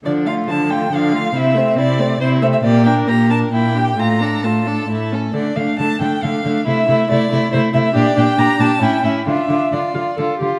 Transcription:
<<
  \new Staff \with { instrumentName = "Violin" } { \time 3/4 \key d \minor \tempo 4 = 136 d''8 f''8 a''8 g''8 f''4 | e''4 d''4 c''8 e''16 e''16 | d''8 g''8 bes''8 a''8 g''4 | bes''4 a''4. r8 |
d''8 f''8 a''8 g''8 f''4 | e''4 d''4 c''8 e''16 e''16 | d''8 g''8 bes''8 a''8 g''8 e''8 | e''4 d''4 r4 | }
  \new Staff \with { instrumentName = "Violin" } { \time 3/4 \key d \minor d'8 f'8 d'8 f'8 d'8 f'8 | e'8 c'8 e'8 c'8 e'8 c'8 | g'8 bes'8 g'8 bes'8 e'8 g'8 | f'8 a'8 f'8 a'8 e'8 a'8 |
d'8 d'8 d'8 d'8 d'8 d'8 | e'8 e'8 e'8 e'8 e'8 e'8 | g'8 g'8 g'8 g'8 e'8 e'8 | f'8 f'8 f'8 f'8 f'8 f'8 | }
  \new Staff \with { instrumentName = "Viola" } { \time 3/4 \key d \minor f8 a8 f8 a8 f8 a8 | c'8 a8 c'8 a8 c'8 a8 | bes8 d'8 bes8 d'8 bes8 d'8 | a8 d'8 a8 d'8 a8 cis'8 |
a8 a8 a8 a8 a8 a8 | a8 a8 a8 a8 a8 a8 | d'8 d'8 d'8 d'8 cis'8 cis'8 | d'8 d'8 d'8 f'8 a'8 g'8 | }
  \new Staff \with { instrumentName = "Cello" } { \clef bass \time 3/4 \key d \minor d4 d4 d4 | c4 c4 c4 | bes,4 bes,4 bes,4 | a,4 a,4 a,4 |
d8 d8 d8 d8 d8 d8 | c8 c8 c8 c8 c8 c8 | bes,8 bes,8 bes,8 bes,8 a,8 a,8 | d8 d8 d8 d8 d8 d8 | }
>>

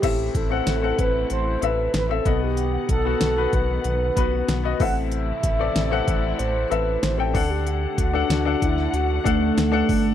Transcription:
<<
  \new Staff \with { instrumentName = "Soft synth lead" } { \time 4/4 \key a \dorian \tempo 4 = 94 g'8 a'4 b'8 c''8 b'8 b'16 a'8 g'16~ | g'8 a'4 b'8 b'4 r8 fis''8 | e''2 c''8 b'8 c''16 a'8 g'16~ | g'8 fis'4 e'8 fis'8 a4. | }
  \new Staff \with { instrumentName = "Upright piano" } { \time 4/4 \key a \dorian <c' a' e''>8. <c' a' fis''>8 <c' a' fis''>4 r16 <c' a' e''>8. <c' a' e''>16 <b dis'' fis''>8~ | <b dis'' fis''>8 r16 <b fis' a'>8 <b fis' b'>4 r16 <b fis' b'>8. <b fis' dis''>16 <c' a' e''>8~ | <c' a' e''>8 r16 <c' a' d''>8 <c' a' fis''>4 r16 <c' a' e''>8. <c' a' g''>16 <d' a' fis''>8~ | <d' a' fis''>8 r16 <d' a' fis''>8 <d' a' fis''>4 r16 <d' a' fis''>8. <d' a' fis''>8. | }
  \new Staff \with { instrumentName = "Upright piano" } { \clef bass \time 4/4 \key a \dorian a,4. r2 b,8~ | b,4 r2 r8 a,8~ | a,4 r2 r8 d8~ | d4 r2. | }
  \new Staff \with { instrumentName = "String section" } { \time 4/4 \key a \dorian <c e a e'>2.~ <c e a e'>8 <dis b fis''>8~ | <dis b fis''>2.~ <dis b fis''>8 <c e a e'>8~ | <c e a e'>2.~ <c e a e'>8 <d a fis''>8~ | <d a fis''>1 | }
  \new Staff \with { instrumentName = "Analog synth bass" } { \clef bass \time 4/4 \key a \dorian a,,8 a,,8 a,,8 a,,8 a,,8 a,,8 a,,8 b,,8~ | b,,8 b,,8 b,,8 b,,8 b,,8 b,,8 b,,8 a,,8~ | a,,8 a,,8 a,,8 a,,8 a,,8 a,,8 a,,8 d,8~ | d,8 d,8 d,8 d,8 d,8 d,8 d,8 g,,8 | }
  \new DrumStaff \with { instrumentName = "Drums" } \drummode { \time 4/4 <cymc hh bd>8 <hh bd>8 <hh sn>8 <hh bd>8 hh8 hh8 <hh sn>8 <hh bd>8 | hh8 <hh bd>8 <hh sn>8 <hh bd>8 hh8 <hh bd>8 <hh sn>8 <hho bd>8 | hh8 <hh bd>8 <hh sn>8 <hh bd>8 hh8 hh8 <hh sn>8 <hho bd>8 | hh8 <hh bd>8 <hh sn>8 <hh bd>16 sn16 hh8 <hh bd>8 <hh sn>8 <hho bd>8 | }
>>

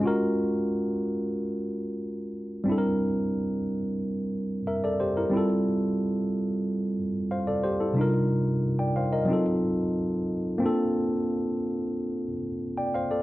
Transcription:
\new Staff \with { instrumentName = "Tine electric piano" } { \time 4/4 \key f \major \tempo 4 = 91 << { r1 | r2. <bes' e''>16 <a' d''>16 <g' c''>16 <e' bes'>16~ | <e' bes'>16 r2 r8. <c'' f''>16 <a' d''>16 <g' c''>16 <e' a'>16~ | <e' a'>16 r4 <d'' g''>16 <c'' f''>16 <bes' ees''>8 r4. r16 |
r2. r16 <d'' g''>16 <c'' f''>16 <a' d''>16 | } \\ { <aes des' f' ges' bes'>1 | <g c' d' e' a' bes'>2. r4 | <g c' e' f' a'>1 | <c g d' ees' f' bes'>2 <ges c' ees' f' a'>2 |
<bes c' d' f' a'>1 | } >> }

